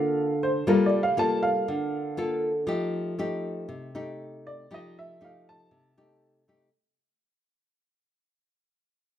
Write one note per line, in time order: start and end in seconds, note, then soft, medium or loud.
0.00 0.63 D3 medium
0.00 0.33 A#3 medium
0.00 0.33 F4 medium
0.00 0.33 A4 medium
0.00 0.37 F5 medium
0.43 0.66 C5 medium
0.67 1.65 G3 medium
0.67 0.99 A#3 medium
0.67 0.99 F4 medium
0.67 0.99 A4 medium
0.67 0.84 A#4 medium
0.86 1.01 D5 medium
1.03 1.18 F5 medium
1.17 2.13 A#3 medium
1.17 2.14 F4 soft
1.17 2.14 A4 medium
1.17 1.42 A5 medium
1.43 2.14 F5 medium
1.68 2.66 D3 medium
2.17 2.51 A#3 medium
2.17 2.51 F4 medium
2.17 2.52 A4 medium
2.67 3.66 F3 medium
2.67 3.14 A3 medium
2.67 3.14 D#4 soft
2.67 3.14 G4 medium
3.19 3.90 A3 medium
3.19 3.90 D#4 medium
3.19 3.90 G4 medium
3.69 4.67 C3 medium
3.95 4.66 A3 medium
3.95 4.66 D#4 medium
3.95 4.66 G4 medium
4.47 4.70 D5 medium
4.71 5.69 F3 medium
4.71 5.16 A3 medium
4.71 5.17 D#4 medium
4.71 5.17 G4 medium
4.71 4.96 D#5 medium
4.99 5.21 E5 medium
5.21 5.92 A3 soft
5.21 5.92 D#4 soft
5.21 5.93 G4 medium
5.21 5.47 F5 medium
5.49 6.57 A5 medium
5.71 6.69 C3 medium
5.97 6.43 A3 medium
5.97 6.43 D#4 medium
5.97 6.43 G4 medium
6.48 6.68 A3 medium
6.48 6.68 D#4 medium
6.48 6.69 G4 medium